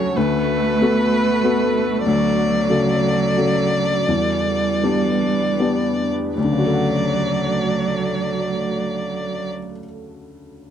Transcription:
Already playing: D2 F#3 C#4 F#4 A4 C#5
0.16 D2 A3 B3 B4
0.81 B3 F#4 A4
1.44 B3 F#4 A4
2.05 D2 C#3 F#3 D5
2.70 C#3 F#4 A4
3.37 C#3 F#4 A4
4.08 E2 G3 D4 G4 B4
4.84 B3 D4 G4
5.60 B3 D4 G4
6.36 D2 F#3 A3 F#4 A4 D5
6.44 D3
6.51 C#3
6.59 F#4
6.66 A4
6.73 F#5

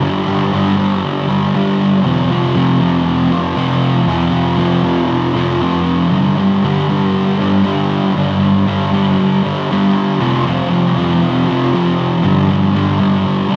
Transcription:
0.01 G2 D3 G3
0.27 D3 G3
0.52 G2 D3 G3
0.77 D3 G3
1.28 D3 G3
1.54 G2 D3 G3
2.04 F2 C3 F3
2.30 C3 F3
2.54 F2 C3 F3
2.80 C3 F3
3.31 C3 F3
3.55 F2 C3 F3
4.06 F2 C3 F3
4.31 C3 F3
4.57 F2 C3 F3
4.83 C3 F3
5.35 C3 F3
5.61 F2 C3 F3
6.11 G2 D3 G3
6.35 D3 G3
6.63 G2 D3 G3
6.88 D3 G3
7.38 D3 G3
7.63 G2 D3 G3
8.15 G2 D3 G3
8.40 D3 G3
8.67 G2 D3 G3
8.92 D3 G3
9.43 D3 G3
9.70 G2 D3 G3
10.20 F2 C3 F3
10.46 C3 F3
10.70 F2 C3 F3
10.97 C3 F3
11.48 C3 F3
11.73 F2 C3 F3
12.24 G2 D3 G3
12.49 D3 G3
12.73 G2 D3 G3
13.00 D3 G3
13.49 D3 G3

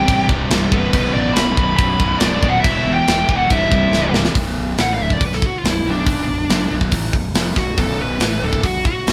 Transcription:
Already playing: C2 G2 C3 G4 G5
0.06 A1 C2 G2 C3, kick, crash
0.28 C1 C2 G2 C3, kick
0.50 C1 C2 G2 C3, snare, crash
0.71 C1 C2 G2 C3 B3 B4, kick
0.92 B0 B1 F#2 B2, kick, crash
0.97 B2
1.14 A1 B1 F#2 B2 D4 D5
1.34 B0 B1 F#2 B2 B4 B5, snare, crash
1.56 B0 B1 F#2 B2, kick
1.76 B0 B1 F#2 B2 B4 B5, kick, crash
2.00 B0 B1 F#2 B2, kick
2.19 B0 B1 F#2 D4 D5, snare, crash
2.23 B1 F#2 B2
2.42 D#1 B1 F#2 B2, kick
2.49 F#4 F#5
2.60 E1 E2 E4 E5
2.64 E2 B2 E3, kick, crash
2.84 E1 E2 B2 E3
2.93 G4 G5
3.07 E1 E2 B2 E3, snare, crash
3.28 E1 E2 B2 E3, kick
3.36 F#4 F#5
3.48 C1 C2 G2 C3 E4 E5, kick, crash
3.71 C1 C2 G2 C3, kick
3.91 C1 C2 G2 C3, snare
4.13 C1 C2 G2 C3, snare
4.25 snare
4.35 B0 B1 F#2 B2, kick, open hi-hat
4.78 A1 A2 E3 A3 F#5, snare, open hi-hat
4.94 F5
4.98 D1 D2 A2 D3 E5
5.10 D5, kick
5.20 B0 B1 F#2, kick, open hi-hat
5.26 B4
5.33 A4, snare
5.42 kick
5.46 F#4
5.58 F4
5.64 B0 B1 F#2, snare, open hi-hat
5.70 E4
5.85 B0 B1 F#2 B2
5.91 D4
6.07 kick, open hi-hat
6.27 B0 B1 F#2
6.49 F#1 F#2 C#3 F#3, snare, open hi-hat
6.71 B0 B1 F#2 B2
6.81 kick
6.91 A1 A2 E3 A3, kick, open hi-hat
7.13 B0 B1 F#2, kick
7.34 F1 F2 C3 F3, snare, open hi-hat
7.56 B0 B1 F#2 F#4, kick, snare
7.77 B0 B1 F#2 B2 A4, kick, open hi-hat
8.02 B4
8.20 A1 A2 E3 A3, snare, open hi-hat
8.41 D1 D2 A2 D3
8.45 A4
8.53 kick
8.63 B0 B1 F#2 F#4, kick, open hi-hat
8.85 F#4, kick
9.06 B0 B1 F#2, snare, open hi-hat

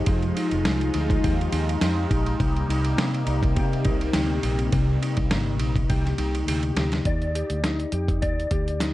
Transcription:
Already playing: F3 G#3 D#4 G4
0.06 F1 F3 F4, kick, ride
0.23 ride
0.37 D#4, ride
0.51 F1, ride
0.65 C2 G#3, snare, ride
0.81 ride
0.94 D2 D#4, ride
1.10 kick, ride
1.24 D#2 G4, kick, ride
1.41 ride
1.52 D#2 D#4, ride
1.69 ride
1.81 F2 G4, snare, ride
2.10 A#1 D#4, kick, ride
2.26 ride
2.40 C2 C3 G3 A#3, kick, ride
2.56 ride
2.69 C2 D#4, ride
2.85 ride
2.97 C3 A#3, snare, ride
3.14 ride
3.27 C2 D#4, ride
3.43 kick, ride
3.56 C3 G4, kick, ride
3.73 ride
3.85 C2 D#4, kick, ride
4.01 ride
4.13 D2 G4, snare, ride
4.43 A#1 D#4, ride
4.59 ride
4.72 C2 C3, kick, ride
5.02 D#4, ride
5.17 C2, kick, ride
5.30 G1 A#3, snare, ride
5.59 A#1 D#4, ride
5.76 kick, ride
5.89 C2 G4, kick, ride
6.06 snare, ride
6.18 C2 D#4, ride
6.35 ride
6.47 D2 G4, ride
6.63 ride
6.76 D2 D#4, snare, ride
6.92 snare, ride
7.05 D#2 D5, kick, closed hi-hat
7.22 closed hi-hat
7.35 G4, closed hi-hat
7.50 D2, closed hi-hat
7.63 D#4, snare, closed hi-hat
7.80 closed hi-hat
7.92 F2 G4, closed hi-hat
8.08 kick, closed hi-hat
8.22 D#2 D5, kick, closed hi-hat
8.40 closed hi-hat
8.51 D2 G4, kick, closed hi-hat
8.68 closed hi-hat
8.80 D#4, snare, closed hi-hat

